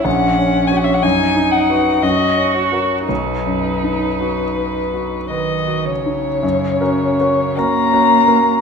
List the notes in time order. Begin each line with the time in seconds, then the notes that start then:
0.04 A#1 C#4 F#5
0.39 C#4
0.68 F#4 G#5
0.72 C#5
0.77 F#5
0.84 E5
0.94 F#5
1.03 F#2 D#4 G#5
1.36 D#4
1.51 F#5
1.69 F#4 B4
2.02 F#2 F#4 D#5
2.38 C#4
2.54 C#5
2.72 F#4 A#4
3.08 B1 D#4 B4
3.47 F#2
3.84 D#4
4.21 F#4
4.57 B4
4.94 F#4
5.30 D#3 B4 D#5
5.68 F#4
5.86 C#3 C#5
6.06 D#4
6.43 F#2
6.81 C#4 F#4 A#4
7.20 C#4 F#4 A#4
7.57 A#3 C#4 F#4 A#4 A#5
7.93 C#4 F#4 A#4
8.27 C#4 F#4 A#4